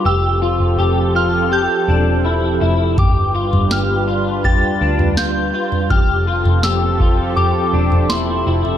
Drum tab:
SD |----------------|----o-------o---|----o-------o---|
FT |----------------|o--o----o--o---o|o--o----o--o---o|
BD |----------------|o-------o-------|o-----o---------|